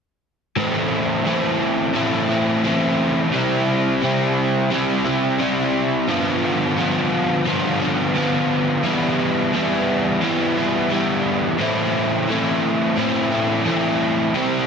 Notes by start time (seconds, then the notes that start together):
0.56 A2 E3 A3 C4 E4
1.25 E3 A3 C4 E4
1.94 A2 E3 A3 C4 E4
2.29 A3 C4 E4
2.64 E3 A3 C4 E4
3.32 C3 G3 C4 E4
4.01 C3 G3 C4 E4
4.70 C3 G3 C4 E4
5.04 G3 C4 E4
5.39 C3 G3 C4 E4
6.08 G2 D3 F3 B3 F4
6.76 D3 F3 B3 F4
7.45 G2 D3 F3 B3 F4
7.80 F3 B3 F4
8.15 D3 F3 B3 F4
8.83 E3 G3 B3 E4
9.53 E3 G3 B3 E4
10.21 E3 G3 B3 E4
10.57 G3 B3 E4
10.90 E3 G3 B3 E4
11.58 A2 E3 A3 C4 E4
12.28 E3 A3 C4 E4
12.96 A2 E3 A3 C4 E4
13.31 A3 C4 E4
13.65 E3 A3 C4 E4
14.34 C3 G3 C4 E4